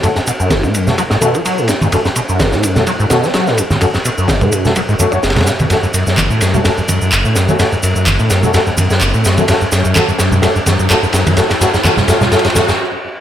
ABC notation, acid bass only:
X:1
M:4/4
L:1/16
Q:"Swing 16ths" 1/4=127
K:F#m
V:1 name="Acid bass" clef=bass
F,, F,, B,, F,, F,,, A,, F,, F, F, G,, B,, F, F, A,, F,, G,, | F,, F,, B,, F,, F,,, A,, F,, F, F, G,, B,, F, F, A,, F,, G,, | F,, F,, B,, F,, F,,, A,, F,, F, F, G,, F,, F,, F,,, F,, G,, B,, | F,, F,, F,, F,, F,,, A,, F,, F, F,, F,, F,, F,, F,,, A,, F,, F, |
F,, F,, F,, F,, F,,, A,, F,, F, F,, F,, F,, F,, F,,, A,, F,, F, | F,, F,, F,, F,, F,, F,, F,, F,, F,, F,, F,, F,, F,, F,, F,, F,, | F,, F,, F,, F,, F,, F,, F,, F,, F,, F,, F,, F,, z4 |]